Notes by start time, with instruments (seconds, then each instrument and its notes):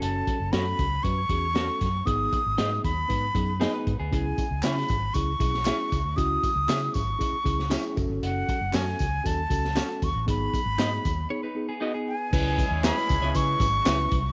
Already playing: tine electric piano C#4 F#4 A4, clean electric guitar C#4 A4
0.02 fingered electric bass F#1, flute A5, closed hi-hat
0.27 kick, closed hi-hat
0.40 fingered electric bass F#1
0.52 fingered electric bass F#2, tine electric piano C#4 F#4 A4, clean electric guitar C#4 F#4 A4 C#5, flute B5, snare, closed hi-hat
0.79 fingered electric bass C#2, kick, closed hi-hat
1.03 fingered electric bass F#2, tine electric piano C#4 F#4 B4, flute C#6, kick, closed hi-hat
1.29 fingered electric bass E2, tine electric piano C#4 F#4 G#4, kick, closed hi-hat
1.54 tine electric piano C#4 F#4 A4, clean electric guitar C#4 F#4 A4 C#5, snare, closed hi-hat
1.81 fingered electric bass F#2, kick, snare, closed hi-hat
2.06 fingered electric bass G#1, tine electric piano B3 D#4 G#4, flute D#6, kick, closed hi-hat
2.33 kick, closed hi-hat
2.46 fingered electric bass G#1
2.58 fingered electric bass G#2, tine electric piano B3 D#4 G#4, clean electric guitar D#4 G#4 B4 D#5, snare, closed hi-hat
2.84 fingered electric bass D#2, flute B5, kick, closed hi-hat
3.08 fingered electric bass G#2, tine electric piano B3 D#4 B4, kick, closed hi-hat
3.34 fingered electric bass F#2, tine electric piano B3 D#4 G#4, kick, closed hi-hat
3.60 tine electric piano B3 D#4 G#4, clean electric guitar B3 D#4 G#4 B4 D#5, snare, closed hi-hat
3.73 clean electric guitar D#4 B4
3.87 fingered electric bass G#2, kick, closed hi-hat
3.99 fingered electric bass D2, clean electric guitar B3 G#4
4.11 fingered electric bass C#2, tine electric piano C#4 E4 G#4, flute G#5, kick, closed hi-hat
4.38 kick, closed hi-hat, tambourine
4.51 fingered electric bass C#2
4.63 fingered electric bass C#3, tine electric piano C#4 E4 G#4, clean electric guitar C#4 E4 G#4 C#5, flute B5, snare, clap, closed hi-hat, tambourine
4.77 snare
4.88 fingered electric bass G#1, kick, closed hi-hat, tambourine
5.14 fingered electric bass C#2, tine electric piano C#4 E4 G#4, flute C#6, kick, closed hi-hat, tambourine
5.39 fingered electric bass B1, tine electric piano C#4 E4 G#4, kick, closed hi-hat, tambourine
5.54 snare
5.65 tine electric piano C#4 E4 G#4, clean electric guitar C#4 E4 G#4 C#5, snare, clap, closed hi-hat, tambourine
5.92 fingered electric bass C#2, kick, closed hi-hat, tambourine
6.05 fingered electric bass D2
6.16 fingered electric bass C#2, tine electric piano C#4 E4 F#4, flute D#6, kick, closed hi-hat, tambourine
6.43 kick, closed hi-hat, tambourine
6.56 fingered electric bass C#2
6.68 fingered electric bass C#3, tine electric piano C#4 E4 G#4, clean electric guitar C#4 E4 G#4 C#5, snare, clap, closed hi-hat, tambourine
6.94 fingered electric bass G#1, flute C#6, kick, closed hi-hat, tambourine
7.19 tine electric piano C#4 E4 G#4, kick, closed hi-hat, tambourine
7.33 muted fingered electric bass stroke
7.44 fingered electric bass C#2, tine electric piano C#4 E4 G#4, kick, closed hi-hat, tambourine
7.59 snare
7.70 tine electric piano C#4 E4 G#4, clean electric guitar C#4 E4 G#4 C#5, snare, clap, closed hi-hat, tambourine
7.95 fingered electric bass F#1, tine electric piano C#4 F#4 A4, kick, closed hi-hat, tambourine
8.09 fingered electric bass G1
8.23 fingered electric bass F#1, flute F#5, closed hi-hat
8.49 kick, closed hi-hat, tambourine
8.61 fingered electric bass F#1
8.72 fingered electric bass F#2, tine electric piano C#4 F#4 A4, clean electric guitar C#4 F#4 A4 C#5, flute G#5, snare, clap, closed hi-hat, tambourine
8.88 snare
8.99 fingered electric bass C#2, kick, closed hi-hat, tambourine
9.24 fingered electric bass D#2, tine electric piano C#4 F#4 A4, flute A5, kick, closed hi-hat, tambourine
9.50 fingered electric bass C#2, tine electric piano C#4 F#4 A4, kick, closed hi-hat, tambourine
9.65 snare
9.75 tine electric piano C#4 F#4 A4, clean electric guitar C#4 F#4 A4 C#5, snare, clap, closed hi-hat, tambourine
10.02 fingered electric bass D#2, flute C#6, kick, closed hi-hat, tambourine
10.14 fingered electric bass A1
10.26 fingered electric bass G#1, tine electric piano B3 D#4 G#4, flute B5, kick, closed hi-hat, tambourine
10.54 kick, closed hi-hat, tambourine
10.66 fingered electric bass G#1
10.78 fingered electric bass G#2, tine electric piano B3 D#4 G#4, clean electric guitar D#4 G#4 B4 D#5, snare, clap, closed hi-hat, tambourine
11.05 fingered electric bass D#2, kick, closed hi-hat, tambourine
11.30 tine electric piano B3 D#4 G#4, clean electric guitar C#5
11.43 clean electric guitar D#4 B4
11.55 tine electric piano B3 D#4 G#4
11.69 clean electric guitar B3 G#4
11.81 tine electric piano B3 D#4 G#4, clean electric guitar D#4 F#4 G#4 B4 D#5
11.94 clean electric guitar B3 G#4
12.08 flute G#5
12.32 fingered electric bass C#2, horn section G#3 C#4 E4 G#4, tine electric piano C#4 E4 B4, kick, crash, tambourine
12.58 kick, closed hi-hat, tambourine
12.71 fingered electric bass D#2
12.83 clean electric guitar B3 E4 G#4 C#5, tine electric piano C#4 E4 B4, flute B5, snare, clap, closed hi-hat, tambourine
12.97 snare
13.09 fingered electric bass C#2, kick, closed hi-hat, tambourine
13.21 fingered electric bass C#2, clean electric guitar B3 E4 G#4 C#5
13.34 fingered electric bass C#3, tine electric piano C#4 E4 B4, flute C#6, kick, closed hi-hat, tambourine
13.60 fingered electric bass G#1, kick, closed hi-hat, tambourine
13.85 fingered electric bass C#2, clean electric guitar B3 E4 G#4 C#5, tine electric piano C#4 E4 B4, snare, clap, closed hi-hat, tambourine
14.12 fingered electric bass C2, kick, closed hi-hat